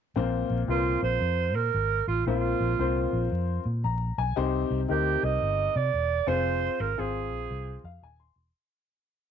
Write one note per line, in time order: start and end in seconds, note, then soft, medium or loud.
0.16 0.43 A#1 medium
0.16 0.99 A#2 medium
0.16 0.59 C4 medium
0.16 0.59 F4 medium
0.16 0.59 A#4 medium
0.16 0.59 C5 medium
0.50 0.65 A#1 medium
0.68 0.95 C2 medium
0.68 1.52 C4 medium
0.68 1.53 F4 medium
0.68 1.01 F4 medium
0.68 1.53 A#4 medium
0.68 0.78 B4 medium
0.76 1.56 C5 medium
1.02 1.17 A#1 medium
1.02 1.57 C5 loud
1.21 1.55 F2 medium
1.55 1.70 A#2 medium
1.55 2.07 A#4 loud
1.74 2.00 G#1 medium
2.07 2.22 A1 medium
2.07 2.25 F4 medium
2.26 2.53 A#1 loud
2.26 3.09 A#2 medium
2.26 2.69 C4 medium
2.26 3.28 F4 medium
2.26 2.69 F4 medium
2.26 2.69 A#4 medium
2.26 2.70 C5 medium
2.60 2.75 A#1 medium
2.79 3.05 C2 medium
2.79 3.62 C4 medium
2.79 3.63 F4 medium
2.79 3.63 A#4 medium
2.79 3.63 C5 medium
3.13 3.27 A#1 medium
3.32 3.58 F2 medium
3.65 3.86 A#2 medium
3.84 4.10 A#1 medium
3.84 4.16 A#5 medium
4.18 4.32 B1 medium
4.18 4.35 G#5 medium
4.36 4.63 C2 medium
4.36 5.19 C3 medium
4.36 4.78 C4 medium
4.36 4.78 D#4 medium
4.36 4.79 G4 medium
4.36 4.79 C5 medium
4.70 4.85 C2 medium
4.88 5.15 D2 medium
4.88 5.72 C4 medium
4.88 5.72 D#4 medium
4.88 5.72 G4 medium
4.88 5.26 G4 medium
4.88 5.72 A#4 medium
5.23 5.37 C2 medium
5.23 5.78 D#5 loud
5.42 5.67 G1 medium
5.76 5.90 C3 loud
5.76 6.29 D5 loud
5.94 6.20 E1 medium
6.27 6.67 F1 medium
6.27 6.87 C4 medium
6.27 6.87 F4 medium
6.27 6.87 G#4 medium
6.27 6.87 C5 loud
6.27 6.82 C5 loud
6.80 6.94 G#1 medium
6.80 7.01 A#4 medium
6.97 7.32 G#1 medium
6.97 7.81 C4 medium
6.97 7.81 F4 medium
6.97 7.81 G#4 medium
6.97 7.85 G#4 medium
6.97 7.81 C5 medium
7.32 7.46 A#1 medium
7.51 7.76 C2 medium
7.84 7.98 F2 medium
7.84 8.02 F5 medium
8.02 8.28 D#1 medium
8.02 8.19 G#5 medium
8.20 8.53 C6 medium
8.36 8.50 E1 medium